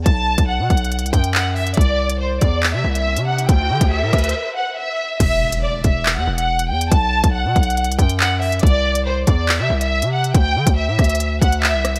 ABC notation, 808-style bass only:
X:1
M:4/4
L:1/16
Q:1/4=140
K:Em
V:1 name="808-style bass" clef=bass
B,,,3 B,,,2 B,, B,,,3 C,, F,,6 | C,,6 E,,3 C, C,,3 C,3 | D,,2 D, D,,2 A,, D,,2 z8 | E,,,6 E,,,3 E,, E,,,4 E,,2 |
B,,,3 B,,,2 B,, B,,,3 C,, F,,6 | C,,6 E,,3 C, C,,3 C,3 | D,,2 D, D,,2 A,, D,,4 D,,3 C,,3 |]